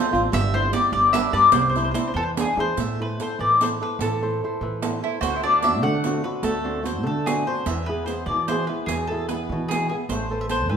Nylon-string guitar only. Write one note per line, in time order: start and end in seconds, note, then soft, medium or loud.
0.00 0.12 A3 medium
0.00 0.10 D4 soft
0.00 0.11 F4 medium
0.11 0.28 C4 medium
0.11 0.28 D4 medium
0.11 0.29 F4 medium
0.32 0.72 G3 medium
0.53 0.72 C4 soft
0.53 0.72 E4 soft
0.53 0.73 G4 medium
0.73 0.89 C4 soft
0.73 0.89 E4 soft
0.73 0.90 G4 medium
0.92 1.33 G3 medium
1.14 1.32 D4 medium
1.14 1.32 G4 medium
1.14 1.33 B4 medium
1.33 1.50 D4 medium
1.33 1.49 G4 soft
1.33 1.50 B4 medium
1.54 1.94 C3 medium
1.75 1.93 C4 soft
1.75 1.93 D4 soft
1.75 1.94 E4 soft
1.94 2.11 C4 soft
1.94 2.11 D4 soft
1.94 2.11 E4 soft
2.16 2.57 E3 medium
2.37 2.56 D4 medium
2.37 2.57 E4 soft
2.37 2.58 G#4 medium
2.57 2.73 D4 soft
2.57 2.74 E4 soft
2.57 2.74 G#4 medium
2.78 3.18 A3 medium
3.00 3.19 E4 soft
3.00 3.19 A4 soft
3.00 3.20 C5 soft
3.20 3.53 E4 soft
3.20 3.53 A4 soft
3.20 3.54 C5 soft
3.40 3.80 E3 medium
3.62 3.80 E4 soft
3.62 3.80 A4 soft
3.62 3.81 C5 medium
3.81 4.14 E4 soft
3.81 4.14 A4 soft
3.81 4.15 C5 soft
4.00 4.40 E3 medium
4.21 4.43 E4 soft
4.21 4.43 A4 soft
4.21 4.44 C5 soft
4.44 4.76 E4 soft
4.44 4.76 A4 soft
4.44 4.76 C5 soft
4.62 5.01 E3 medium
4.82 5.01 E4 medium
4.82 5.02 A4 soft
4.82 5.02 C5 medium
5.02 5.18 E4 soft
5.02 5.18 A4 soft
5.02 5.18 C5 medium
5.23 5.62 D3 medium
5.43 5.62 C4 medium
5.43 5.62 D4 soft
5.43 5.63 F#4 medium
5.63 5.95 C4 soft
5.63 5.96 D4 soft
5.63 5.96 F#4 soft
5.82 6.22 A3 medium
6.05 6.23 C4 medium
6.05 6.23 D4 soft
6.05 6.24 F#4 medium
6.24 6.57 C4 soft
6.24 6.57 D4 soft
6.24 6.57 F#4 medium
6.43 6.83 A3 medium
6.64 6.82 C4 soft
6.64 6.82 D4 soft
6.64 6.83 F#4 medium
6.83 7.17 C4 soft
6.83 7.17 D4 soft
6.83 7.17 F#4 soft
7.03 7.44 A3 medium
7.27 7.46 C4 soft
7.27 7.46 D4 soft
7.27 7.46 F#4 soft
7.47 7.63 C4 soft
7.47 7.63 D4 soft
7.47 7.63 F#4 soft
7.67 8.07 E3 medium
7.89 8.06 B3 soft
7.89 8.07 E4 soft
7.89 8.08 G#4 soft
8.08 8.40 B3 soft
8.08 8.40 E4 soft
8.08 8.41 G#4 soft
8.29 8.68 B2 medium
8.48 8.68 B3 soft
8.48 8.68 E4 soft
8.48 8.68 G#4 medium
8.69 9.02 B3 soft
8.69 9.02 E4 soft
8.69 9.02 G#4 soft
8.89 9.29 B2 medium
9.11 9.30 B3 soft
9.11 9.29 E4 soft
9.11 9.31 G#4 soft
9.31 9.63 B3 soft
9.31 9.63 E4 soft
9.31 9.64 G#4 soft
9.52 9.90 B2 medium
9.72 9.90 B3 soft
9.72 9.90 E4 soft
9.72 9.90 G#4 medium
9.91 10.06 B3 soft
9.91 10.06 E4 soft
9.91 10.06 G#4 soft
10.11 10.31 A3 medium
10.31 10.49 A4 soft
10.31 10.49 B4 soft
10.31 10.50 C5 medium
10.50 10.77 A4 soft
10.50 10.77 B4 soft
10.50 10.77 C5 soft
10.70 10.77 E3 medium